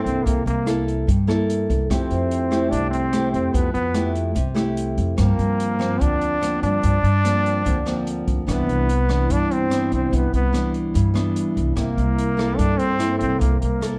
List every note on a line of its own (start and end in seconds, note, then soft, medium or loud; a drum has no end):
0.00 0.23 G2 medium
0.00 0.40 A#3 soft
0.00 0.26 C4 medium
0.00 0.40 E4 medium
0.00 0.40 A4 medium
0.05 0.24 C2 medium
0.05 closed hi-hat soft
0.25 0.45 C2 medium
0.25 1.06 C3 soft
0.25 0.46 A#3 medium
0.25 kick medium
0.25 closed hi-hat soft
0.46 1.04 C2 medium
0.46 0.85 A#3 medium
0.46 closed hi-hat soft
0.66 1.07 A#3 soft
0.66 1.07 E4 medium
0.66 1.08 A4 medium
0.66 cross-stick soft
0.66 closed hi-hat soft
0.88 closed hi-hat soft
1.07 1.88 G2 soft
1.07 1.66 G2 medium
1.07 kick medium
1.07 closed hi-hat soft
1.27 1.86 A#3 medium
1.27 1.86 E4 medium
1.27 1.87 A4 medium
1.27 cross-stick medium
1.27 closed hi-hat soft
1.50 closed hi-hat soft
1.70 1.89 C2 medium
1.70 kick soft
1.70 closed hi-hat soft
1.90 2.09 F2 medium
1.90 2.70 F3 soft
1.90 2.49 A3 soft
1.90 2.73 C4 medium
1.90 2.49 E4 soft
1.90 2.49 G4 medium
1.90 2.68 C5 medium
1.90 kick medium
1.90 cross-stick medium
1.90 closed hi-hat soft
2.11 2.68 F2 medium
2.11 closed hi-hat soft
2.31 closed hi-hat soft
2.51 3.09 A3 medium
2.51 3.10 E4 medium
2.51 3.10 G4 medium
2.51 cross-stick soft
2.51 closed hi-hat soft
2.70 3.30 C2 medium
2.70 3.52 C3 soft
2.70 2.90 D4 medium
2.70 2.91 D5 medium
2.70 kick medium
2.70 closed hi-hat soft
2.91 3.30 C4 medium
2.91 3.30 C5 medium
2.91 closed hi-hat soft
3.13 3.68 A3 soft
3.13 3.68 E4 soft
3.13 3.69 G4 medium
3.13 cross-stick medium
3.13 closed hi-hat soft
3.32 3.53 F2 medium
3.32 3.55 C4 medium
3.32 3.53 C5 medium
3.32 closed hi-hat soft
3.53 3.73 F2 medium
3.53 4.34 F3 soft
3.53 3.73 B3 medium
3.53 3.75 B4 medium
3.53 kick medium
3.53 closed hi-hat soft
3.74 4.32 F2 medium
3.74 4.13 B3 medium
3.74 4.14 B4 medium
3.74 closed hi-hat soft
3.94 4.36 A3 soft
3.94 4.36 E4 soft
3.94 4.36 G4 medium
3.94 cross-stick medium
3.94 closed hi-hat soft
4.15 closed hi-hat soft
4.35 4.94 C2 medium
4.35 5.16 C3 medium
4.35 kick medium
4.35 closed hi-hat soft
4.55 5.14 A3 medium
4.55 5.14 E4 medium
4.55 5.15 G4 medium
4.55 cross-stick medium
4.55 closed hi-hat soft
4.77 closed hi-hat soft
4.98 5.17 F2 medium
4.98 closed hi-hat soft
5.17 5.98 G2 soft
5.17 5.38 G2 medium
5.17 5.76 F3 soft
5.17 5.76 A#3 soft
5.17 6.03 A#3 medium
5.17 5.77 C4 medium
5.17 5.97 A#4 medium
5.17 kick medium
5.17 cross-stick medium
5.17 closed hi-hat soft
5.39 5.97 G2 medium
5.39 closed hi-hat soft
5.60 closed hi-hat soft
5.79 6.38 F3 medium
5.79 6.38 A#3 medium
5.79 6.38 C4 medium
5.79 cross-stick medium
5.79 closed hi-hat soft
6.00 6.59 D2 medium
6.00 6.80 D3 medium
6.00 6.63 D4 loud
6.00 6.62 D5 medium
6.00 kick medium
6.00 closed hi-hat soft
6.21 closed hi-hat soft
6.41 6.97 F3 soft
6.41 6.97 A#3 soft
6.41 6.97 C4 medium
6.41 cross-stick medium
6.41 closed hi-hat soft
6.63 6.82 G2 medium
6.63 8.23 D4 loud
6.63 8.23 D5 medium
6.63 closed hi-hat soft
6.82 7.63 G2 soft
6.82 7.03 G2 medium
6.82 kick medium
6.82 closed hi-hat soft
7.03 7.61 G2 medium
7.03 closed hi-hat soft
7.24 7.62 F3 medium
7.24 7.62 A#3 soft
7.24 7.62 C4 medium
7.24 cross-stick medium
7.24 closed hi-hat soft
7.46 closed hi-hat soft
7.64 8.24 D2 medium
7.64 8.45 D3 soft
7.64 7.77 F3 medium
7.64 7.77 A#3 soft
7.64 7.78 C4 medium
7.64 kick medium
7.64 closed hi-hat soft
7.86 8.44 F3 medium
7.86 8.44 A#3 medium
7.86 8.44 C4 medium
7.86 cross-stick medium
7.86 closed hi-hat soft
8.07 closed hi-hat soft
8.28 8.46 D2 medium
8.28 kick soft
8.28 closed hi-hat soft
8.47 8.66 C2 medium
8.47 9.27 C3 soft
8.47 8.88 E3 soft
8.47 8.89 B3 soft
8.47 9.33 B3 medium
8.47 8.88 D4 soft
8.47 9.26 B4 medium
8.47 kick medium
8.47 cross-stick medium
8.47 closed hi-hat soft
8.67 9.25 C2 medium
8.67 closed hi-hat soft
8.89 closed hi-hat soft
9.09 9.67 E3 medium
9.09 9.68 B3 medium
9.09 9.68 D4 medium
9.09 cross-stick medium
9.09 closed hi-hat soft
9.29 10.09 G2 soft
9.29 9.88 G2 medium
9.29 9.54 D4 medium
9.29 9.51 D5 medium
9.29 kick medium
9.29 closed hi-hat soft
9.51 9.93 C4 medium
9.51 9.92 C5 medium
9.51 closed hi-hat soft
9.70 10.26 E3 soft
9.70 10.26 B3 medium
9.70 10.26 D4 medium
9.70 cross-stick medium
9.70 closed hi-hat soft
9.92 10.11 C2 medium
9.92 10.17 C4 medium
9.92 10.12 C5 medium
9.92 closed hi-hat soft
10.11 10.32 C2 medium
10.11 10.92 C3 soft
10.11 kick medium
10.11 closed hi-hat soft
10.15 10.34 B3 medium
10.15 10.34 B4 medium
10.33 10.90 C2 medium
10.33 10.72 B3 medium
10.33 10.72 B4 medium
10.33 closed hi-hat soft
10.53 11.11 E3 medium
10.53 11.12 B3 soft
10.53 11.12 D4 medium
10.53 cross-stick soft
10.53 closed hi-hat soft
10.74 closed hi-hat soft
10.94 11.74 G2 medium
10.94 11.52 G2 medium
10.94 kick medium
10.94 closed hi-hat soft
11.14 11.73 E3 medium
11.14 11.73 B3 medium
11.14 11.73 D4 medium
11.14 cross-stick medium
11.14 closed hi-hat soft
11.36 closed hi-hat soft
11.57 11.75 C2 medium
11.57 closed hi-hat soft
11.76 11.96 C2 medium
11.76 12.56 C3 soft
11.76 12.17 A#3 soft
11.76 12.59 A#3 medium
11.76 12.17 E4 soft
11.76 12.55 A#4 medium
11.76 kick medium
11.76 cross-stick medium
11.76 closed hi-hat soft
11.97 12.55 C2 medium
11.97 closed hi-hat soft
12.18 closed hi-hat soft
12.37 12.96 A#3 medium
12.37 12.96 E4 medium
12.37 12.97 A4 medium
12.37 cross-stick medium
12.37 closed hi-hat soft
12.57 13.39 G2 medium
12.57 13.17 G2 medium
12.57 12.79 D4 loud
12.57 12.79 D5 medium
12.57 kick medium
12.57 closed hi-hat soft
12.78 13.18 C4 medium
12.78 13.18 C5 medium
12.78 closed hi-hat soft
12.99 13.55 A#3 medium
12.99 13.55 E4 medium
12.99 13.55 A4 medium
12.99 cross-stick medium
12.99 closed hi-hat soft
13.19 13.40 C2 medium
13.19 13.41 C4 medium
13.19 13.39 C5 medium
13.19 closed hi-hat soft
13.39 13.60 C2 medium
13.39 13.99 C3 soft
13.39 13.61 A#3 medium
13.39 13.61 A#4 medium
13.39 kick soft
13.39 closed hi-hat soft
13.61 13.99 C2 medium
13.61 13.99 A#3 medium
13.61 13.99 A#4 medium
13.61 closed hi-hat soft
13.81 13.99 A#3 soft
13.81 13.99 E4 medium
13.81 13.99 A4 medium
13.81 cross-stick medium
13.81 closed hi-hat soft